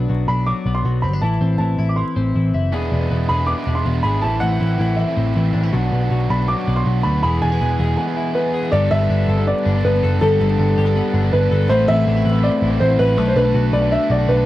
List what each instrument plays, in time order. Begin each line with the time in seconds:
Already playing: clean electric guitar B3 D4
0.10 picked electric bass B1, clean electric guitar F#3
0.28 picked electric bass B1, clean electric guitar D4, upright piano B5
0.47 clean electric guitar F#3, upright piano D6
0.66 picked electric bass B1, clean electric guitar B3
0.75 upright piano C6
0.84 picked electric bass B1, clean electric guitar F#3
1.02 picked electric bass G1, clean electric guitar C4, upright piano B5
1.13 clean electric guitar D4
1.22 picked electric bass A1, clean electric guitar E3 E4, upright piano A5
1.41 picked electric bass A1, clean electric guitar C4
1.58 picked electric bass A1, clean electric guitar E3, upright piano A5
1.78 picked electric bass A1, clean electric guitar E4
1.89 upright piano D6
1.96 clean electric guitar E3, upright piano C6
2.16 picked electric bass A1, clean electric guitar C4
2.35 picked electric bass A1, clean electric guitar E3
2.54 picked electric bass F#1, clean electric guitar E4
2.72 picked electric bass E1, overdriven electric guitar E3 G#3 D4 E4, clean electric guitar B3 G#4
2.92 picked electric bass E1, clean electric guitar D4
3.01 overdriven electric guitar E3 G#3 D4 E4
3.10 picked electric bass E1, clean electric guitar B3
3.28 picked electric bass E1, overdriven electric guitar E3 G#3 D4 E4, clean electric guitar G#4, upright piano B5
3.47 clean electric guitar B3, upright piano D6
3.58 overdriven electric guitar E2 B2 E3 G#3 D4 E4
3.67 picked electric bass E1, clean electric guitar D4
3.75 upright piano C6
3.85 picked electric bass E1, overdriven electric guitar E3 G#3 D4 E4, clean electric guitar B3
4.03 picked electric bass G#1, clean electric guitar G#4, upright piano B5
4.22 picked electric bass A1, clean electric guitar E3 E4, overdriven electric guitar E3 A3 C4 E4, upright piano A5
4.40 picked electric bass A1, clean electric guitar C4, upright piano F#5
4.51 overdriven electric guitar A3 C4 E4
4.60 picked electric bass A1, clean electric guitar E3
4.79 picked electric bass A1, overdriven electric guitar E3 A3 C4 E4, clean electric guitar E4
4.96 clean electric guitar E3, upright piano E5
5.08 overdriven electric guitar A2 E3 A3 C4 E4
5.16 picked electric bass A1, clean electric guitar C4
5.36 picked electric bass A1, clean electric guitar E3, overdriven electric guitar E3 A3 C4 E4
5.54 picked electric bass A1, clean electric guitar D4
5.63 clean electric guitar E4
5.73 picked electric bass B1, clean electric guitar F#3 D4, overdriven electric guitar F#3 B3 D4 F#4
5.92 picked electric bass B1, clean electric guitar B3
6.01 overdriven electric guitar B3 D4 F#4
6.11 picked electric bass B1, clean electric guitar F#3
6.29 picked electric bass B1, overdriven electric guitar F#3 B3 D4 F#4, clean electric guitar D4, upright piano B5
6.48 clean electric guitar F#3, upright piano D6
6.57 overdriven electric guitar B2 F#3 B3 D4 F#4
6.67 picked electric bass B1, clean electric guitar B3
6.76 upright piano C6
6.85 picked electric bass B1, overdriven electric guitar F#3 B3 D4 F#4, clean electric guitar F#3
7.03 picked electric bass D2, clean electric guitar D4, upright piano B5
7.23 picked electric bass E1, overdriven electric guitar E3 G#3 B3 G#4, clean electric guitar E3 G#4, upright piano B5
7.42 picked electric bass E1, clean electric guitar D4, upright piano G#5
7.51 overdriven electric guitar E3 G#3 B3 G#4, clean electric guitar E4
7.61 picked electric bass E1, clean electric guitar B3
7.79 picked electric bass E1, overdriven electric guitar E3 G#3 B3 G#4, clean electric guitar G#4
7.97 clean electric guitar B3, upright piano G#5
8.07 overdriven electric guitar E2 B2 E3 G#3 B3 G#4
8.17 clean electric guitar E4
8.35 overdriven electric guitar E3 G#3 B3 G#4, clean electric guitar B3, upright piano B4
8.54 clean electric guitar G#4
8.72 picked electric bass G1, clean electric guitar G3 A4, overdriven electric guitar G3 B3 D4 A4, upright piano D5
8.91 picked electric bass G1, clean electric guitar B3, upright piano E5
9.01 overdriven electric guitar B3 D4 A4
9.10 picked electric bass G1, clean electric guitar D4
9.28 picked electric bass G1, clean electric guitar A4
9.38 overdriven electric guitar G3 B3 D4 A4
9.47 clean electric guitar B3, upright piano D5
9.66 picked electric bass G1, clean electric guitar D4
9.75 overdriven electric guitar B3 D4 A4
9.85 picked electric bass G1, clean electric guitar B3, upright piano B4
9.94 overdriven electric guitar B3 D4 A4
10.03 picked electric bass F#1, clean electric guitar A4
10.21 picked electric bass G1, overdriven electric guitar G3 B3 D4 A4, clean electric guitar G3 A4, upright piano A4
10.40 picked electric bass G1, clean electric guitar B3
10.49 overdriven electric guitar B3 D4 A4
10.59 picked electric bass G1, clean electric guitar D4
10.77 picked electric bass G1, clean electric guitar G4
10.86 overdriven electric guitar G3 B3 D4 A4, clean electric guitar A4
10.96 clean electric guitar B3
11.14 picked electric bass G1, clean electric guitar D4
11.23 overdriven electric guitar B3 D4 A4
11.33 picked electric bass G1, clean electric guitar B3, upright piano B4
11.41 overdriven electric guitar B3 D4 A4
11.51 picked electric bass G1, clean electric guitar A4
11.69 picked electric bass A1, overdriven electric guitar E3 B3 C4 E4, clean electric guitar A3 B4, upright piano C5
11.88 picked electric bass A1, clean electric guitar C4, upright piano E5
11.96 overdriven electric guitar B3 C4 E4
12.07 picked electric bass A1, clean electric guitar D4
12.17 clean electric guitar E4
12.25 picked electric bass A1, clean electric guitar B4
12.33 overdriven electric guitar A2 E3 B3 C4 E4
12.43 clean electric guitar C4, upright piano D5
12.62 picked electric bass A1, clean electric guitar E4
12.71 overdriven electric guitar B3 C4 E4
12.80 picked electric bass A1, clean electric guitar C4, upright piano C5
12.89 overdriven electric guitar B3 C4 E4, upright piano C5
12.99 picked electric bass A1, clean electric guitar B4, upright piano B4
13.16 picked electric bass B1, overdriven electric guitar F#3 A3 D4 A4, clean electric guitar A3 B4
13.28 upright piano C5
13.36 picked electric bass B1, clean electric guitar D4, upright piano B4
13.44 overdriven electric guitar A3 D4 A4
13.54 picked electric bass B1, clean electric guitar F#4
13.73 picked electric bass B1, clean electric guitar B4, upright piano D5
13.82 overdriven electric guitar B2 F#3 A3 D4 A4
13.91 clean electric guitar D4, upright piano E5
14.10 picked electric bass B1, clean electric guitar F#4, upright piano D5
14.19 overdriven electric guitar A3 D4 A4
14.28 picked electric bass B1, clean electric guitar D4, upright piano B4
14.38 overdriven electric guitar A3 D4 A4